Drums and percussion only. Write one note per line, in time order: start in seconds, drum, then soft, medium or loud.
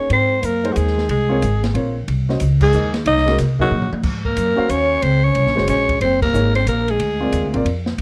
0.10 ride medium
0.43 hi-hat pedal medium
0.43 ride medium
0.65 ride soft
0.76 hi-hat pedal medium
0.76 ride medium
0.87 snare soft
0.98 snare soft
1.09 ride medium
1.42 hi-hat pedal medium
1.42 ride medium
1.64 snare medium
1.64 ride soft
1.75 ride medium
2.08 ride medium
2.29 snare soft
2.40 hi-hat pedal soft
2.40 ride medium
2.61 kick medium
2.61 crash medium
2.73 hi-hat pedal medium
2.94 snare medium
2.94 ride soft
3.06 ride medium
3.17 snare soft
3.28 snare soft
3.28 ride soft
3.38 snare soft
3.38 hi-hat pedal medium
3.38 ride medium
3.59 kick medium
3.71 mid tom soft
3.82 mid tom medium
3.93 mid tom medium
4.03 kick medium
4.03 crash medium
4.25 kick medium
4.37 hi-hat pedal medium
4.37 ride medium
4.69 hi-hat pedal medium
4.69 ride medium
5.02 ride medium
5.35 ride medium
5.47 snare soft
5.58 snare soft
5.68 hi-hat pedal medium
5.68 ride medium
5.89 kick medium
5.89 ride medium
6.01 ride medium
6.22 kick medium
6.22 crash medium
6.34 hi-hat pedal medium
6.55 ride soft
6.67 hi-hat pedal soft
6.67 ride medium
6.88 ride soft
7.00 ride medium
7.32 hi-hat pedal medium
7.32 ride medium
7.54 ride soft
7.66 ride medium
7.86 snare medium
7.98 ride medium